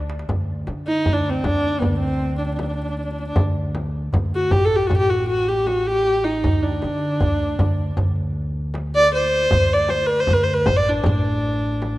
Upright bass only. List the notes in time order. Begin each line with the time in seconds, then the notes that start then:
Already playing: D2
0.29 D2
0.68 D3
1.07 D2
1.44 D2
1.83 D2
3.36 D2
4.13 D2
4.52 A1
4.90 A1
6.44 D2
6.84 D3
7.22 D2
7.60 D2
7.97 D2
9.52 D2
10.30 D2
10.68 A1
11.06 A1